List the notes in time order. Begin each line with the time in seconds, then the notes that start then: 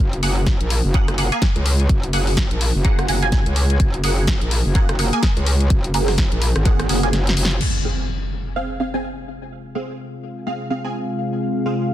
0.00 F#1
0.13 closed hi-hat
0.23 F#1 A#3 G#4 F#5, open hi-hat
0.47 kick, snare, closed hi-hat
0.61 A#1, closed hi-hat
0.70 open hi-hat
0.84 F#1
0.94 A#3 G#4 F#5, kick, closed hi-hat
1.08 F#1, cross-stick, closed hi-hat
1.18 A#3 G#4 F#5, open hi-hat
1.32 A#3 G#4 G#5, closed hi-hat
1.42 kick, snare, closed hi-hat
1.56 C#2, closed hi-hat
1.66 open hi-hat
1.80 closed hi-hat
1.89 F#1, kick, closed hi-hat
2.03 closed hi-hat
2.13 F#1 A#3 G#4 F#5, open hi-hat
2.27 open hi-hat
2.37 kick, snare, closed hi-hat
2.51 A#1, closed hi-hat
2.61 open hi-hat
2.75 F#1
2.85 A#3 G#4 F#5, kick, closed hi-hat
2.99 cross-stick, closed hi-hat
3.08 F#1 A#3 G#4 F#5, open hi-hat
3.22 A#3 G#4 G#5, closed hi-hat
3.32 kick, snare, closed hi-hat
3.46 C#2, closed hi-hat
3.56 open hi-hat
3.70 closed hi-hat
3.80 F#1, kick, closed hi-hat
3.94 closed hi-hat
4.04 F#1 A#3 G#4 F#5, open hi-hat
4.27 kick, snare, closed hi-hat
4.41 A#1, closed hi-hat
4.51 open hi-hat
4.65 F#1
4.75 A#3 G#4 F#5, kick, closed hi-hat
4.89 F#1, cross-stick, closed hi-hat
4.99 A#3 G#4 F#5, open hi-hat
5.13 A#3 G#4 G#5, closed hi-hat
5.23 kick, snare, closed hi-hat
5.37 C#2, closed hi-hat
5.46 open hi-hat
5.61 closed hi-hat
5.70 F#1, kick, closed hi-hat
5.84 closed hi-hat
5.94 F#1 A#3 G#4 F#5, open hi-hat
6.08 cross-stick, snare, open hi-hat
6.18 kick, snare, closed hi-hat
6.32 A#1, closed hi-hat
6.42 open hi-hat
6.56 G#1, cross-stick, closed hi-hat
6.65 A#3 G#4 F#5, kick, closed hi-hat
6.79 cross-stick, closed hi-hat
6.89 F#1 A#3 G#4 F#5, open hi-hat
7.03 A#3 G#4 G#5, closed hi-hat
7.13 F#1, snare, closed hi-hat
7.27 snare, closed hi-hat
7.37 F#1, open hi-hat
7.45 snare
7.51 closed hi-hat
7.61 C4 G#4 F5, crash, impact
7.85 C4 G#4 F5
8.56 C4 G#4 F5
8.80 C4 G#4 F5
8.94 C4 G#4 G#5
9.75 C4 G#4 F5
10.47 C4 G#4 F5
10.70 C4 G#4 F5
10.84 C4 G#4 G#5
11.66 C4 G#4 F5